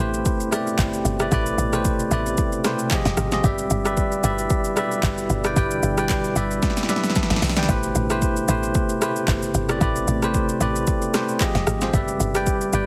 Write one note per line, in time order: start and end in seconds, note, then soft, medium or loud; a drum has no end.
0.00 0.22 A1 loud
0.00 2.87 B2 medium
0.00 2.87 C3 medium
0.00 0.51 A3 medium
0.00 2.87 A3 medium
0.00 0.52 E4 medium
0.00 0.53 G4 medium
0.00 2.87 G4 medium
0.00 0.53 B4 medium
0.00 1.75 C5 loud
0.14 shaker medium
0.25 kick loud
0.25 shaker medium
0.40 shaker medium
0.51 1.05 A3 medium
0.51 1.05 E4 medium
0.51 1.05 G4 medium
0.51 1.06 B4 medium
0.51 1.06 D5 loud
0.51 cross-stick loud
0.51 shaker medium
0.67 shaker soft
0.79 1.02 G1 medium
0.79 kick medium
0.79 clap loud
0.79 shaker medium
0.93 shaker soft
1.05 1.28 G1 medium
1.05 shaker medium
1.19 1.29 A3 medium
1.19 1.29 E4 medium
1.19 1.30 G4 medium
1.19 1.30 B4 medium
1.19 1.30 D5 medium
1.19 cross-stick loud
1.19 shaker medium
1.31 1.55 A1 loud
1.31 1.64 A3 medium
1.31 1.64 E4 medium
1.31 1.64 G4 medium
1.31 1.65 B4 medium
1.31 1.65 D5 loud
1.31 kick loud
1.31 shaker medium
1.46 shaker medium
1.58 2.05 A1 medium
1.58 shaker medium
1.73 2.04 A3 medium
1.73 2.04 E4 medium
1.73 2.05 G4 medium
1.73 2.05 B4 medium
1.73 2.05 C5 loud
1.73 cross-stick medium
1.73 shaker medium
1.85 kick loud
1.85 shaker medium
1.99 shaker medium
2.11 2.35 A1 loud
2.11 2.55 A3 medium
2.11 2.55 E4 medium
2.11 2.55 G4 medium
2.11 2.56 B4 medium
2.11 2.56 D5 loud
2.11 shaker loud
2.26 shaker medium
2.37 kick loud
2.37 shaker medium
2.52 shaker medium
2.64 2.91 A3 medium
2.64 2.91 E4 medium
2.64 2.90 G4 medium
2.64 2.92 B4 medium
2.64 2.92 C5 loud
2.64 cross-stick loud
2.64 snare medium
2.64 shaker medium
2.79 shaker medium
2.90 3.23 F3 medium
2.90 3.23 F4 medium
2.90 3.24 G4 medium
2.90 3.24 G#4 medium
2.90 3.24 D#5 loud
2.90 kick medium
2.90 clap loud
2.90 shaker medium
3.05 3.16 F1 loud
3.05 snare medium
3.05 shaker medium
3.17 3.41 G#1 loud
3.17 cross-stick loud
3.17 shaker medium
3.32 3.41 F3 medium
3.32 3.42 F4 medium
3.32 3.42 G4 medium
3.32 3.42 G#4 medium
3.32 3.42 D#5 loud
3.32 snare medium
3.32 shaker soft
3.43 3.67 G1 loud
3.43 11.36 B2 medium
3.43 7.65 D3 medium
3.43 3.76 G3 medium
3.43 7.65 G3 medium
3.43 7.65 E4 medium
3.43 3.76 G4 medium
3.43 3.77 B4 medium
3.43 3.77 D5 medium
3.43 3.77 E5 loud
3.43 kick loud
3.43 shaker medium
3.58 shaker medium
3.70 4.18 G1 loud
3.70 shaker medium
3.85 4.16 G3 medium
3.85 4.17 G4 medium
3.85 4.17 B4 medium
3.85 4.17 D5 medium
3.85 4.17 E5 loud
3.85 cross-stick medium
3.85 shaker medium
3.97 kick loud
3.97 shaker medium
4.12 shaker soft
4.23 4.47 G1 loud
4.23 4.67 G3 medium
4.23 4.67 G4 medium
4.23 4.68 B4 medium
4.23 4.68 D5 medium
4.23 4.68 E5 loud
4.23 shaker loud
4.39 shaker medium
4.50 kick loud
4.50 shaker medium
4.64 shaker medium
4.76 5.30 G3 medium
4.76 5.30 G4 medium
4.76 5.30 B4 medium
4.76 5.30 D5 medium
4.76 5.31 E5 loud
4.76 cross-stick loud
4.76 shaker medium
4.91 shaker medium
5.03 5.27 G1 medium
5.03 kick loud
5.03 clap loud
5.03 shaker medium
5.18 shaker soft
5.30 5.53 G1 loud
5.30 shaker medium
5.44 5.54 G3 medium
5.44 5.54 G4 medium
5.44 5.54 B4 medium
5.44 5.55 D5 medium
5.44 5.55 G5 loud
5.44 cross-stick loud
5.44 shaker medium
5.56 5.80 G1 loud
5.56 5.89 G3 medium
5.56 5.89 G4 medium
5.56 5.89 B4 medium
5.56 5.89 D5 medium
5.56 5.90 G5 loud
5.56 kick loud
5.56 shaker medium
5.71 shaker medium
5.83 6.30 G1 loud
5.83 shaker medium
5.97 6.29 G3 medium
5.97 6.29 G4 medium
5.97 6.29 B4 medium
5.97 6.29 D5 medium
5.97 6.30 G5 loud
5.97 cross-stick medium
5.97 shaker medium
6.09 kick loud
6.09 clap medium
6.09 shaker medium
6.24 shaker soft
6.36 6.59 G1 loud
6.36 6.79 G3 medium
6.36 6.80 G4 medium
6.36 6.80 B4 medium
6.36 6.80 D5 medium
6.36 6.80 E5 loud
6.36 shaker loud
6.51 shaker medium
6.62 kick loud
6.62 snare medium
6.62 shaker medium
6.70 snare medium
6.77 snare medium
6.77 shaker medium
6.83 snare medium
6.89 7.42 G3 medium
6.89 7.42 G4 medium
6.89 7.43 B4 medium
6.89 7.43 D5 medium
6.89 7.43 E5 medium
6.89 snare medium
6.89 shaker medium
6.96 snare medium
7.04 snare medium
7.04 shaker soft
7.10 snare medium
7.15 7.65 A5 medium
7.15 kick medium
7.15 snare medium
7.15 shaker medium
7.23 snare medium
7.30 7.41 G1 medium
7.30 snare loud
7.30 shaker medium
7.36 snare medium
7.42 7.66 B1 loud
7.42 snare loud
7.42 open hi-hat medium
7.42 shaker medium
7.49 snare loud
7.56 7.66 G3 medium
7.56 7.67 G4 medium
7.56 7.67 B4 medium
7.56 7.67 D5 medium
7.56 7.67 G5 medium
7.56 snare loud
7.56 shaker soft
7.63 snare loud
7.68 7.92 A1 loud
7.68 11.37 C3 medium
7.68 8.01 A3 medium
7.68 11.37 A3 medium
7.68 8.01 E4 medium
7.68 9.79 G4 medium
7.68 8.01 G4 medium
7.68 8.02 B4 medium
7.68 8.02 C5 medium
7.68 kick loud
7.68 shaker medium
7.83 shaker medium
7.95 8.42 A1 loud
7.95 shaker medium
8.10 8.41 A3 medium
8.10 8.41 E4 medium
8.10 8.42 G4 medium
8.10 8.42 B4 medium
8.10 8.42 C5 loud
8.10 cross-stick medium
8.10 shaker medium
8.22 kick loud
8.22 shaker medium
8.36 shaker medium
8.48 8.72 A1 loud
8.48 8.92 A3 medium
8.48 8.92 E4 medium
8.48 8.92 G4 medium
8.48 8.93 B4 medium
8.48 8.93 C5 loud
8.48 shaker loud
8.63 shaker medium
8.74 kick loud
8.74 shaker medium
8.89 shaker medium
9.01 9.54 A3 medium
9.01 9.55 E4 medium
9.01 9.55 G4 medium
9.01 9.55 B4 medium
9.01 9.55 C5 medium
9.01 cross-stick loud
9.01 shaker medium
9.16 shaker medium
9.28 9.51 G1 medium
9.28 kick medium
9.28 clap loud
9.28 shaker medium
9.43 shaker soft
9.54 9.78 G1 medium
9.54 shaker medium
9.69 9.79 A3 medium
9.69 9.79 E4 medium
9.69 9.79 G4 medium
9.69 9.79 B4 medium
9.69 9.80 D5 loud
9.69 cross-stick loud
9.69 shaker medium
9.81 10.05 A1 loud
9.81 10.13 A3 medium
9.81 10.14 E4 medium
9.81 10.14 G4 medium
9.81 11.39 A4 medium
9.81 10.14 B4 medium
9.81 10.14 D5 medium
9.81 kick loud
9.81 shaker medium
9.96 shaker medium
10.08 10.55 A1 medium
10.08 shaker medium
10.22 10.54 A3 medium
10.22 10.54 E4 medium
10.22 10.54 G4 medium
10.22 10.54 B4 medium
10.22 10.55 C5 loud
10.22 cross-stick medium
10.22 shaker medium
10.34 kick loud
10.34 shaker medium
10.49 shaker medium
10.60 10.84 A1 loud
10.60 11.04 A3 medium
10.60 11.04 E4 medium
10.60 11.05 G4 medium
10.60 11.05 B4 medium
10.60 11.05 D5 loud
10.60 shaker loud
10.76 shaker medium
10.87 kick loud
10.87 shaker medium
11.02 shaker medium
11.14 11.40 A3 medium
11.14 11.41 E4 medium
11.14 11.40 G4 medium
11.14 11.41 B4 medium
11.14 11.41 C5 loud
11.14 cross-stick loud
11.14 snare medium
11.14 shaker medium
11.29 shaker soft
11.40 11.73 F3 medium
11.40 11.73 F4 medium
11.40 11.73 G4 medium
11.40 11.73 G#4 medium
11.40 11.74 D#5 loud
11.40 kick loud
11.40 clap loud
11.40 shaker medium
11.55 11.66 F1 loud
11.55 snare medium
11.55 shaker soft
11.67 11.90 G#1 loud
11.67 cross-stick loud
11.67 shaker medium
11.81 11.91 F3 medium
11.81 11.91 F4 medium
11.81 11.91 G4 medium
11.81 11.92 G#4 medium
11.81 11.92 C5 loud
11.81 snare medium
11.81 shaker medium
11.93 12.17 G1 loud
11.93 12.86 B2 medium
11.93 12.86 D3 medium
11.93 12.26 G3 medium
11.93 12.86 G3 medium
11.93 12.86 E4 medium
11.93 12.26 G4 medium
11.93 12.26 B4 medium
11.93 12.26 D5 medium
11.93 12.27 E5 medium
11.93 kick loud
11.93 shaker medium
12.08 shaker medium
12.20 12.67 G1 loud
12.20 shaker medium
12.34 12.66 G3 medium
12.34 12.66 G4 medium
12.34 12.66 B4 medium
12.34 12.67 D5 medium
12.34 12.67 G5 loud
12.34 cross-stick medium
12.34 shaker medium
12.46 kick medium
12.46 shaker medium
12.61 shaker medium
12.73 12.86 G1 loud
12.73 12.86 G3 medium
12.73 12.86 G4 medium
12.73 12.86 B4 medium
12.73 12.86 D5 medium
12.73 12.86 G5 loud
12.73 shaker medium